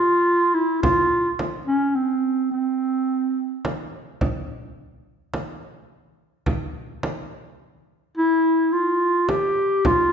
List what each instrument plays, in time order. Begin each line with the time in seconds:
Already playing: clarinet F4
0.54 clarinet E4
0.82 clarinet F4, frame drum
1.39 frame drum
1.67 clarinet C#4
1.95 clarinet C4
2.51 clarinet C4
3.65 frame drum
4.21 frame drum
5.34 frame drum
6.46 frame drum
7.03 frame drum
8.17 clarinet E4
8.72 clarinet F4
9.28 clarinet G4, frame drum
9.85 clarinet F4, frame drum